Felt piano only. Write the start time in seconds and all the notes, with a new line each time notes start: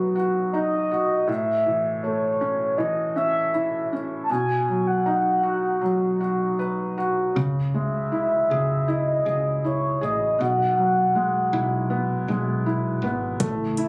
Already playing: B2 F#3 D#4 F#4
0.15 F#4
0.54 D#4
0.91 F#4
1.27 A2
1.66 E3
2.04 A3
2.41 C#4
2.78 E3
3.16 C#4
3.54 E4
3.93 C#4
4.30 B2
4.68 F#3
5.06 D#4
5.43 F#4
5.81 F#3
6.21 F#4
6.59 B4
6.98 F#4
7.36 C#3
7.74 G#3
8.12 E4
8.50 G#4
8.88 E4
9.25 G#4
9.64 E4
10.01 G#4
10.39 B2
10.78 F#3
11.15 G#3
11.53 E4
11.90 B3
12.29 G#3
12.66 E4
13.04 B3
13.40 A3
13.78 E4